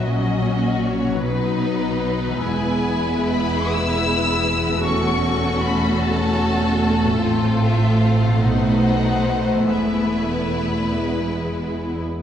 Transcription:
<<
  \new Staff \with { instrumentName = "Violin section" } { \time 6/8 \key e \major \tempo 4. = 49 dis''4 cis''8 b'4. | gis''4 b''8 e'''4. | cis'''4 b''8 a''4. | r8 e''8 f''8 fis''4. |
e''4. r4. | }
  \new Staff \with { instrumentName = "Violin section" } { \time 6/8 \key e \major << { fis'4. b'4.~ | b'2. | a'2.~ | a'4. c''4. |
b'2~ b'8. r16 | } \\ { r4. dis'4. | e'2. | fis'2. | f'4. dis'4. |
e'2~ e'8. r16 | } >> }
  \new Staff \with { instrumentName = "Harp" } { \time 6/8 \key e \major <ais, fis fis' cis''>4. <b, fis dis' b'>4. | <e gis e' b'>2. | <e a fis' a'>2. | <a, a f' c''>4. <b, a dis' c''>4. |
<e gis e' b'>2. | }
  \new Staff \with { instrumentName = "Viola section" } { \time 6/8 \key e \major << { cis'4. b4.~ | b2. | cis'2. | c'4. b4.~ |
b2~ b8. r16 | } \\ { fis2. | gis2. | a2.~ | a2.~ |
a4. gis4~ gis16 r16 | } >> }
  \new Staff \with { instrumentName = "Cello section" } { \clef bass \time 6/8 \key e \major ais,4. b,4. | e,2.~ | e,2. | a,4. b,4. |
e,2~ e,8. r16 | }
  \new Staff \with { instrumentName = "Double bass section" } { \clef bass \time 6/8 \key e \major ais,,4. b,,4. | e,,2.~ | e,,2. | a,,4. b,,4. |
e,,2~ e,,8. r16 | }
>>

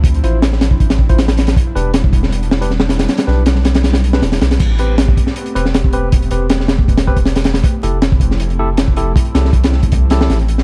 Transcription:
<<
  \new Staff \with { instrumentName = "Tine electric piano" } { \time 4/4 \key a \minor \tempo 4 = 158 r8 <e' f' c''>8 r4. r16 <e' f' c''>16 r4 | r8 <d' g' b'>8 r4. r16 <d' g' b'>16 r4 | r8 <d' g' b'>8 r4. r16 <d' g' b'>16 r4 | r8 <c' g' b'>8 r4. <c' g' b'>16 r8. <c' g' b'>8 |
r8 <c' g' b'>8 r4. <c' g' b'>16 r4 r16 | r8 <e' g' a'>8 r4. <e' g' a'>16 r8. <e' g' a'>8 | r8 <e' g' a'>8 r4. <e' g' a'>8. r8. | }
  \new Staff \with { instrumentName = "Analog synth pad" } { \time 4/4 \key a \minor << { e'1~ | e'1~ | e'1 | g'1~ |
g'1 | e'1~ | e'1 | } \\ { <f c' d'>1 | <g b d'>1~ | <g b d'>1 | <a b c'>1~ |
<a b c'>1 | <f c'>1~ | <f c'>1 | } >> }
  \new Staff \with { instrumentName = "Sub bass" } { \clef bass \time 4/4 \key a \minor d,8 a,,2.~ a,,8 | r8 e,,2.~ e,,8 | r8 b,,2~ b,,8 e,,8 b,,8 | a,,4. r4 e,,4.~ |
e,,8 e,,2.~ e,,8 | r8 f,,2.~ f,,8 | r8 c,2~ c,8 a,,4 | }
  \new DrumStaff \with { instrumentName = "Drums" } \drummode { \time 4/4 <hh bd>16 hh16 hh8 <hh sn>16 sn16 <hh sn>16 bd16 <hh bd>16 <hh sn>16 bd16 <hh bd>16 <hh sn>16 <hh sn>16 <hh sn>16 <hh sn>16 | <hh bd>8 hh8 <hh sn>16 bd16 <hh bd>16 sn16 hh16 hh16 sn16 hh16 sn16 sn16 <hh sn>16 <hh sn>16 | <hh sn>16 <hh sn>16 sn8 <hh sn>16 sn16 <hh sn>16 <hh sn>16 <hh sn>16 <hh sn>16 hh16 sn16 <hh sn>16 <hh sn>16 <hh sn>16 <hh sn>16 | <cymc hh bd>8 hh8 <hh sn>16 bd16 <hh bd>16 sn16 hh16 hh16 hh16 sn16 <hh sn>16 bd16 hh8 |
<hh bd>16 hh16 hh8 <hh sn>16 sn16 <hh sn>16 bd16 <hh bd>16 <hh sn>16 bd16 <hh bd>16 <hh sn>16 <hh sn>16 <hh sn>16 <hh sn>16 | <hh bd>8 hh8 <hh sn>16 bd16 <hh bd>16 sn16 hh16 hh8. <hh sn>16 bd16 hh8 | <hh bd>16 hh16 <hh sn>16 sn16 <hh bd>16 <hh sn>16 sn16 <hh bd>16 <hh bd>8 <hh sn>16 sn16 <hh sn>16 hh16 hh16 sn16 | }
>>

